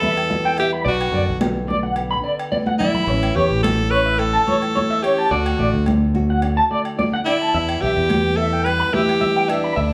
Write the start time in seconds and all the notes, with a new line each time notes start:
Already playing: E2 G3 B3 A4
0.02 E3 E5, high conga
0.17 low agogo
0.30 G3, muted clean electric guitar stroke, high conga
0.45 G5
0.58 B3 G4 E5, muted conga, low agogo
0.73 B5
0.84 B1 B2 D5, muted conga
0.88 F#4
1.01 low agogo
1.12 F#2 D3 D5, muted conga
1.29 B1
1.40 B3, high conga, low agogo
1.68 D4 D5, high conga
1.83 F#5
1.96 B3, muted conga, low agogo
2.11 B5
2.23 D3 D5
2.40 low agogo
2.52 B3 D5, high conga
2.66 F#5, high conga
2.79 D4 E4 D5, low conga, low agogo
2.94 B5, low conga
3.07 A1 E3 A3 C#4, muted nylon-string guitar stroke, muted clean electric guitar stroke, muted conga
3.23 low agogo
3.35 E2 E3 G4 C#5, muted conga
3.50 A1
3.63 A4, high conga, low agogo
3.91 C#4 B4 C#5
4.06 E5
4.19 A3 A4, muted conga, low agogo
4.33 A5
4.47 E3 C#5, high conga
4.62 low agogo
4.75 A3 C#5, high conga
4.91 E5
5.03 C#4 G4 C#5, muted conga, low agogo
5.18 A5
5.31 D2 D3 A3 D4 F#4 D5, muted conga
5.46 low agogo
5.59 A1 A3 D5, muted conga
5.74 D2
5.86 D4, high conga, low agogo
6.15 F#4, high conga
6.30 F#5
6.42 D4, muted conga, low agogo
6.57 A5
6.71 A3 D5
6.85 low agogo
6.99 D4 D5, high conga
7.14 F#5
7.25 D4 E4 D5, muted conga, low agogo
7.42 A5
7.54 E2 E5, muted conga
7.69 low agogo
7.81 B1 E3 G4 E5, muted conga
7.97 E2
8.09 G3, high conga, low agogo
8.37 B3 A4 E5
8.53 G5
8.65 G3 B4, muted conga, low agogo
8.80 B5
8.93 E3 G4 E5, high conga
9.09 low agogo
9.21 G3 E5, high conga
9.37 G5
9.49 B3 D4 E5, muted conga, low agogo
9.64 B5
9.76 D2 D3 E5, muted conga